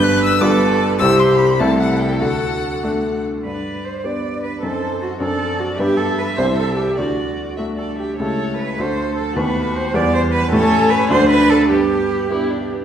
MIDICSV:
0, 0, Header, 1, 5, 480
1, 0, Start_track
1, 0, Key_signature, 1, "major"
1, 0, Tempo, 390625
1, 1231, Time_signature, 6, 3, 24, 8
1, 1719, Tempo, 408998
1, 4599, Tempo, 388601
1, 7479, Tempo, 399467
1, 10359, Tempo, 387847
1, 13719, Tempo, 405954
1, 15553, End_track
2, 0, Start_track
2, 0, Title_t, "Violin"
2, 0, Program_c, 0, 40
2, 45, Note_on_c, 0, 90, 127
2, 278, Note_off_c, 0, 90, 0
2, 290, Note_on_c, 0, 88, 127
2, 507, Note_on_c, 0, 86, 108
2, 525, Note_off_c, 0, 88, 0
2, 987, Note_off_c, 0, 86, 0
2, 1211, Note_on_c, 0, 88, 127
2, 1469, Note_on_c, 0, 84, 113
2, 1487, Note_off_c, 0, 88, 0
2, 1699, Note_on_c, 0, 83, 113
2, 1718, Note_off_c, 0, 84, 0
2, 1950, Note_on_c, 0, 81, 109
2, 1967, Note_off_c, 0, 83, 0
2, 2176, Note_off_c, 0, 81, 0
2, 2183, Note_on_c, 0, 78, 100
2, 2418, Note_on_c, 0, 79, 99
2, 2436, Note_off_c, 0, 78, 0
2, 2663, Note_off_c, 0, 79, 0
2, 2670, Note_on_c, 0, 78, 110
2, 3864, Note_off_c, 0, 78, 0
2, 4136, Note_on_c, 0, 71, 57
2, 4599, Note_on_c, 0, 72, 54
2, 4617, Note_off_c, 0, 71, 0
2, 4829, Note_off_c, 0, 72, 0
2, 4837, Note_on_c, 0, 74, 61
2, 5322, Note_on_c, 0, 71, 59
2, 5341, Note_off_c, 0, 74, 0
2, 5578, Note_on_c, 0, 69, 69
2, 5596, Note_off_c, 0, 71, 0
2, 6028, Note_off_c, 0, 69, 0
2, 6035, Note_on_c, 0, 66, 67
2, 6292, Note_on_c, 0, 69, 79
2, 6311, Note_off_c, 0, 66, 0
2, 6755, Note_on_c, 0, 66, 77
2, 6773, Note_off_c, 0, 69, 0
2, 6980, Note_on_c, 0, 67, 94
2, 6999, Note_off_c, 0, 66, 0
2, 7217, Note_on_c, 0, 69, 81
2, 7235, Note_off_c, 0, 67, 0
2, 7471, Note_off_c, 0, 69, 0
2, 7486, Note_on_c, 0, 71, 83
2, 7580, Note_off_c, 0, 71, 0
2, 7717, Note_on_c, 0, 72, 89
2, 7966, Note_on_c, 0, 69, 79
2, 7984, Note_off_c, 0, 72, 0
2, 8216, Note_on_c, 0, 67, 69
2, 8234, Note_off_c, 0, 69, 0
2, 8444, Note_off_c, 0, 67, 0
2, 8453, Note_on_c, 0, 66, 63
2, 9152, Note_off_c, 0, 66, 0
2, 9404, Note_on_c, 0, 69, 61
2, 9500, Note_off_c, 0, 69, 0
2, 9647, Note_on_c, 0, 67, 55
2, 9743, Note_off_c, 0, 67, 0
2, 9894, Note_on_c, 0, 69, 75
2, 10382, Note_on_c, 0, 71, 77
2, 10401, Note_off_c, 0, 69, 0
2, 10628, Note_on_c, 0, 72, 79
2, 10646, Note_off_c, 0, 71, 0
2, 11107, Note_on_c, 0, 69, 77
2, 11126, Note_off_c, 0, 72, 0
2, 11342, Note_on_c, 0, 71, 91
2, 11360, Note_off_c, 0, 69, 0
2, 11835, Note_on_c, 0, 72, 90
2, 11853, Note_off_c, 0, 71, 0
2, 12080, Note_on_c, 0, 74, 103
2, 12099, Note_off_c, 0, 72, 0
2, 12304, Note_on_c, 0, 72, 101
2, 12323, Note_off_c, 0, 74, 0
2, 12537, Note_on_c, 0, 71, 106
2, 12555, Note_off_c, 0, 72, 0
2, 12765, Note_on_c, 0, 69, 120
2, 12783, Note_off_c, 0, 71, 0
2, 13247, Note_on_c, 0, 71, 114
2, 13266, Note_off_c, 0, 69, 0
2, 13464, Note_off_c, 0, 71, 0
2, 13472, Note_on_c, 0, 72, 124
2, 13570, Note_off_c, 0, 72, 0
2, 13718, Note_on_c, 0, 71, 109
2, 13948, Note_on_c, 0, 69, 96
2, 13966, Note_off_c, 0, 71, 0
2, 14178, Note_off_c, 0, 69, 0
2, 14186, Note_on_c, 0, 67, 91
2, 15371, Note_off_c, 0, 67, 0
2, 15553, End_track
3, 0, Start_track
3, 0, Title_t, "Violin"
3, 0, Program_c, 1, 40
3, 0, Note_on_c, 1, 71, 101
3, 1227, Note_off_c, 1, 71, 0
3, 1233, Note_on_c, 1, 72, 89
3, 1965, Note_on_c, 1, 69, 90
3, 1983, Note_off_c, 1, 72, 0
3, 3894, Note_off_c, 1, 69, 0
3, 4119, Note_on_c, 1, 74, 52
3, 4790, Note_off_c, 1, 74, 0
3, 4835, Note_on_c, 1, 71, 51
3, 5553, Note_on_c, 1, 72, 61
3, 5571, Note_off_c, 1, 71, 0
3, 6265, Note_off_c, 1, 72, 0
3, 6272, Note_on_c, 1, 74, 71
3, 6981, Note_on_c, 1, 76, 87
3, 7000, Note_off_c, 1, 74, 0
3, 8421, Note_off_c, 1, 76, 0
3, 8428, Note_on_c, 1, 74, 62
3, 9091, Note_off_c, 1, 74, 0
3, 9142, Note_on_c, 1, 76, 66
3, 9238, Note_off_c, 1, 76, 0
3, 9384, Note_on_c, 1, 74, 48
3, 9624, Note_off_c, 1, 74, 0
3, 9631, Note_on_c, 1, 76, 52
3, 9857, Note_off_c, 1, 76, 0
3, 9865, Note_on_c, 1, 73, 70
3, 10539, Note_off_c, 1, 73, 0
3, 10577, Note_on_c, 1, 69, 68
3, 11293, Note_on_c, 1, 66, 79
3, 11311, Note_off_c, 1, 69, 0
3, 12028, Note_on_c, 1, 59, 82
3, 12047, Note_off_c, 1, 66, 0
3, 12737, Note_off_c, 1, 59, 0
3, 12745, Note_on_c, 1, 61, 111
3, 13460, Note_on_c, 1, 62, 106
3, 13478, Note_off_c, 1, 61, 0
3, 14193, Note_on_c, 1, 59, 86
3, 14211, Note_off_c, 1, 62, 0
3, 14866, Note_off_c, 1, 59, 0
3, 14912, Note_on_c, 1, 64, 81
3, 15147, Note_on_c, 1, 62, 70
3, 15165, Note_off_c, 1, 64, 0
3, 15408, Note_on_c, 1, 59, 61
3, 15426, Note_off_c, 1, 62, 0
3, 15553, Note_off_c, 1, 59, 0
3, 15553, End_track
4, 0, Start_track
4, 0, Title_t, "Cello"
4, 0, Program_c, 2, 42
4, 0, Note_on_c, 2, 71, 124
4, 521, Note_off_c, 2, 71, 0
4, 530, Note_on_c, 2, 69, 116
4, 1227, Note_off_c, 2, 69, 0
4, 1254, Note_on_c, 2, 67, 113
4, 1952, Note_off_c, 2, 67, 0
4, 1963, Note_on_c, 2, 64, 94
4, 2666, Note_on_c, 2, 66, 82
4, 2683, Note_off_c, 2, 64, 0
4, 3766, Note_off_c, 2, 66, 0
4, 4122, Note_on_c, 2, 71, 64
4, 4596, Note_on_c, 2, 72, 60
4, 4615, Note_off_c, 2, 71, 0
4, 4841, Note_on_c, 2, 74, 72
4, 4860, Note_off_c, 2, 72, 0
4, 5312, Note_off_c, 2, 74, 0
4, 5319, Note_on_c, 2, 71, 67
4, 5549, Note_off_c, 2, 71, 0
4, 5556, Note_on_c, 2, 69, 76
4, 6030, Note_off_c, 2, 69, 0
4, 6046, Note_on_c, 2, 66, 72
4, 6141, Note_off_c, 2, 66, 0
4, 6276, Note_on_c, 2, 69, 89
4, 6747, Note_on_c, 2, 66, 81
4, 6765, Note_off_c, 2, 69, 0
4, 6967, Note_off_c, 2, 66, 0
4, 6975, Note_on_c, 2, 67, 101
4, 7221, Note_on_c, 2, 69, 95
4, 7240, Note_off_c, 2, 67, 0
4, 7483, Note_on_c, 2, 71, 91
4, 7501, Note_off_c, 2, 69, 0
4, 7695, Note_off_c, 2, 71, 0
4, 7702, Note_on_c, 2, 72, 109
4, 7798, Note_off_c, 2, 72, 0
4, 7935, Note_on_c, 2, 69, 88
4, 8160, Note_off_c, 2, 69, 0
4, 8167, Note_on_c, 2, 67, 79
4, 8429, Note_on_c, 2, 66, 74
4, 8447, Note_off_c, 2, 67, 0
4, 9154, Note_off_c, 2, 66, 0
4, 9393, Note_on_c, 2, 69, 70
4, 9625, Note_off_c, 2, 69, 0
4, 9654, Note_on_c, 2, 67, 65
4, 9887, Note_off_c, 2, 67, 0
4, 9901, Note_on_c, 2, 69, 82
4, 10353, Note_off_c, 2, 69, 0
4, 10360, Note_on_c, 2, 71, 82
4, 10629, Note_on_c, 2, 72, 91
4, 10647, Note_off_c, 2, 71, 0
4, 11072, Note_off_c, 2, 72, 0
4, 11080, Note_on_c, 2, 69, 81
4, 11330, Note_on_c, 2, 71, 92
4, 11349, Note_off_c, 2, 69, 0
4, 11820, Note_on_c, 2, 72, 102
4, 11839, Note_off_c, 2, 71, 0
4, 12052, Note_on_c, 2, 74, 116
4, 12071, Note_off_c, 2, 72, 0
4, 12287, Note_off_c, 2, 74, 0
4, 12292, Note_on_c, 2, 72, 115
4, 12386, Note_off_c, 2, 72, 0
4, 12524, Note_on_c, 2, 71, 116
4, 12758, Note_off_c, 2, 71, 0
4, 12768, Note_on_c, 2, 69, 127
4, 13232, Note_on_c, 2, 71, 122
4, 13250, Note_off_c, 2, 69, 0
4, 13473, Note_off_c, 2, 71, 0
4, 13489, Note_on_c, 2, 72, 127
4, 13721, Note_off_c, 2, 72, 0
4, 13728, Note_on_c, 2, 71, 127
4, 13958, Note_on_c, 2, 69, 110
4, 13976, Note_off_c, 2, 71, 0
4, 14185, Note_off_c, 2, 69, 0
4, 14192, Note_on_c, 2, 67, 99
4, 15374, Note_off_c, 2, 67, 0
4, 15553, End_track
5, 0, Start_track
5, 0, Title_t, "Grand piano"
5, 0, Program_c, 3, 0
5, 0, Note_on_c, 3, 31, 87
5, 0, Note_on_c, 3, 43, 99
5, 0, Note_on_c, 3, 59, 76
5, 0, Note_on_c, 3, 62, 69
5, 0, Note_on_c, 3, 67, 71
5, 39, Control_c, 3, 64, 127
5, 469, Note_off_c, 3, 59, 0
5, 472, Note_off_c, 3, 62, 0
5, 475, Note_off_c, 3, 67, 0
5, 484, Note_off_c, 3, 43, 0
5, 485, Note_off_c, 3, 31, 0
5, 502, Note_on_c, 3, 43, 101
5, 504, Note_on_c, 3, 31, 90
5, 505, Note_on_c, 3, 59, 70
5, 515, Note_on_c, 3, 65, 70
5, 520, Note_on_c, 3, 67, 73
5, 533, Control_c, 3, 64, 0
5, 733, Control_c, 3, 64, 127
5, 1180, Note_off_c, 3, 59, 0
5, 1185, Note_off_c, 3, 65, 0
5, 1187, Note_off_c, 3, 67, 0
5, 1206, Note_off_c, 3, 31, 0
5, 1206, Note_off_c, 3, 43, 0
5, 1235, Note_on_c, 3, 36, 89
5, 1236, Note_on_c, 3, 60, 67
5, 1242, Note_on_c, 3, 48, 80
5, 1244, Note_on_c, 3, 64, 64
5, 1255, Note_on_c, 3, 67, 65
5, 1256, Control_c, 3, 64, 0
5, 1472, Control_c, 3, 64, 127
5, 1911, Note_off_c, 3, 60, 0
5, 1914, Note_off_c, 3, 64, 0
5, 1919, Note_off_c, 3, 67, 0
5, 1936, Note_off_c, 3, 36, 0
5, 1939, Note_off_c, 3, 48, 0
5, 1960, Note_on_c, 3, 48, 81
5, 1961, Note_on_c, 3, 36, 93
5, 1961, Note_on_c, 3, 57, 61
5, 1965, Note_on_c, 3, 64, 69
5, 1977, Note_on_c, 3, 69, 61
5, 1978, Control_c, 3, 64, 0
5, 2170, Control_c, 3, 64, 127
5, 2627, Note_off_c, 3, 57, 0
5, 2629, Note_off_c, 3, 64, 0
5, 2635, Note_off_c, 3, 69, 0
5, 2652, Note_off_c, 3, 36, 0
5, 2652, Note_off_c, 3, 48, 0
5, 2670, Note_on_c, 3, 38, 75
5, 2676, Note_on_c, 3, 50, 66
5, 2695, Control_c, 3, 64, 0
5, 2888, Control_c, 3, 64, 127
5, 3401, Note_on_c, 3, 57, 56
5, 3405, Note_on_c, 3, 62, 59
5, 3416, Note_on_c, 3, 69, 63
5, 4078, Note_off_c, 3, 57, 0
5, 4080, Note_off_c, 3, 62, 0
5, 4083, Note_off_c, 3, 38, 0
5, 4086, Note_off_c, 3, 50, 0
5, 4086, Note_off_c, 3, 69, 0
5, 4126, Note_on_c, 3, 43, 43
5, 4153, Control_c, 3, 64, 0
5, 4338, Control_c, 3, 64, 127
5, 4820, Note_off_c, 3, 43, 0
5, 4827, Note_on_c, 3, 59, 38
5, 4832, Note_on_c, 3, 62, 36
5, 4836, Note_on_c, 3, 67, 41
5, 5505, Note_off_c, 3, 59, 0
5, 5507, Note_off_c, 3, 62, 0
5, 5509, Note_off_c, 3, 67, 0
5, 5550, Note_on_c, 3, 60, 39
5, 5556, Note_on_c, 3, 42, 54
5, 5563, Note_on_c, 3, 63, 37
5, 5566, Note_on_c, 3, 69, 37
5, 5586, Control_c, 3, 64, 0
5, 5751, Control_c, 3, 64, 127
5, 6227, Note_off_c, 3, 60, 0
5, 6234, Note_off_c, 3, 63, 0
5, 6235, Note_off_c, 3, 69, 0
5, 6246, Note_off_c, 3, 42, 0
5, 6265, Note_on_c, 3, 42, 67
5, 6267, Note_on_c, 3, 60, 49
5, 6274, Note_on_c, 3, 62, 49
5, 6284, Note_on_c, 3, 69, 48
5, 6306, Control_c, 3, 64, 0
5, 6531, Control_c, 3, 64, 127
5, 6937, Note_off_c, 3, 60, 0
5, 6940, Note_off_c, 3, 62, 0
5, 6945, Note_off_c, 3, 69, 0
5, 6964, Note_off_c, 3, 42, 0
5, 6990, Note_on_c, 3, 59, 49
5, 6992, Note_on_c, 3, 43, 73
5, 6997, Note_on_c, 3, 62, 50
5, 7007, Note_on_c, 3, 71, 54
5, 7019, Control_c, 3, 64, 0
5, 7202, Control_c, 3, 64, 127
5, 7669, Note_off_c, 3, 59, 0
5, 7672, Note_off_c, 3, 62, 0
5, 7677, Note_off_c, 3, 71, 0
5, 7696, Note_off_c, 3, 43, 0
5, 7711, Note_on_c, 3, 36, 71
5, 7717, Note_on_c, 3, 60, 52
5, 7721, Note_on_c, 3, 64, 50
5, 7728, Note_on_c, 3, 67, 55
5, 7744, Control_c, 3, 64, 0
5, 7933, Control_c, 3, 64, 127
5, 8385, Note_off_c, 3, 60, 0
5, 8387, Note_off_c, 3, 64, 0
5, 8390, Note_off_c, 3, 67, 0
5, 8408, Note_off_c, 3, 36, 0
5, 8440, Note_on_c, 3, 38, 56
5, 8458, Control_c, 3, 64, 0
5, 8634, Control_c, 3, 64, 127
5, 9138, Note_off_c, 3, 38, 0
5, 9161, Note_on_c, 3, 57, 43
5, 9164, Note_on_c, 3, 66, 44
5, 9166, Note_on_c, 3, 62, 44
5, 9842, Note_off_c, 3, 57, 0
5, 9844, Note_off_c, 3, 66, 0
5, 9845, Note_off_c, 3, 62, 0
5, 9898, Note_on_c, 3, 37, 59
5, 9899, Note_on_c, 3, 57, 45
5, 9906, Note_on_c, 3, 64, 41
5, 9909, Control_c, 3, 64, 0
5, 9915, Note_on_c, 3, 67, 41
5, 10121, Control_c, 3, 64, 127
5, 10557, Note_off_c, 3, 57, 0
5, 10560, Note_off_c, 3, 64, 0
5, 10565, Note_off_c, 3, 67, 0
5, 10584, Note_off_c, 3, 37, 0
5, 10612, Note_on_c, 3, 57, 49
5, 10614, Note_on_c, 3, 38, 65
5, 10623, Note_on_c, 3, 62, 47
5, 10625, Control_c, 3, 64, 0
5, 10631, Note_on_c, 3, 66, 47
5, 10847, Control_c, 3, 64, 127
5, 11277, Note_off_c, 3, 57, 0
5, 11283, Note_off_c, 3, 62, 0
5, 11287, Note_off_c, 3, 66, 0
5, 11307, Note_off_c, 3, 38, 0
5, 11318, Note_on_c, 3, 57, 50
5, 11323, Note_on_c, 3, 39, 71
5, 11329, Note_on_c, 3, 59, 49
5, 11342, Note_on_c, 3, 66, 47
5, 11345, Control_c, 3, 64, 0
5, 11526, Control_c, 3, 64, 127
5, 11994, Note_off_c, 3, 57, 0
5, 11999, Note_off_c, 3, 59, 0
5, 12005, Note_off_c, 3, 66, 0
5, 12024, Note_off_c, 3, 39, 0
5, 12036, Note_on_c, 3, 55, 62
5, 12039, Note_on_c, 3, 40, 82
5, 12050, Note_on_c, 3, 59, 63
5, 12050, Note_on_c, 3, 67, 63
5, 12069, Control_c, 3, 64, 0
5, 12258, Control_c, 3, 64, 127
5, 12708, Note_off_c, 3, 55, 0
5, 12715, Note_off_c, 3, 59, 0
5, 12715, Note_off_c, 3, 67, 0
5, 12737, Note_off_c, 3, 40, 0
5, 12761, Note_on_c, 3, 57, 68
5, 12762, Note_on_c, 3, 45, 96
5, 12773, Note_on_c, 3, 61, 67
5, 12776, Note_on_c, 3, 67, 69
5, 12786, Control_c, 3, 64, 0
5, 13009, Control_c, 3, 64, 127
5, 13426, Note_off_c, 3, 57, 0
5, 13432, Note_off_c, 3, 61, 0
5, 13434, Note_off_c, 3, 67, 0
5, 13455, Note_off_c, 3, 45, 0
5, 13478, Note_on_c, 3, 38, 97
5, 13479, Note_on_c, 3, 57, 71
5, 13490, Note_on_c, 3, 62, 81
5, 13491, Note_on_c, 3, 66, 71
5, 13498, Control_c, 3, 64, 0
5, 13736, Control_c, 3, 64, 127
5, 14150, Note_off_c, 3, 57, 0
5, 14156, Note_off_c, 3, 62, 0
5, 14156, Note_off_c, 3, 66, 0
5, 14176, Note_off_c, 3, 38, 0
5, 14193, Note_on_c, 3, 43, 71
5, 14219, Control_c, 3, 64, 0
5, 14453, Control_c, 3, 64, 127
5, 14892, Note_off_c, 3, 43, 0
5, 14916, Note_on_c, 3, 59, 53
5, 14924, Note_on_c, 3, 62, 54
5, 14926, Note_on_c, 3, 67, 60
5, 15553, Note_off_c, 3, 59, 0
5, 15553, Note_off_c, 3, 62, 0
5, 15553, Note_off_c, 3, 67, 0
5, 15553, End_track
0, 0, End_of_file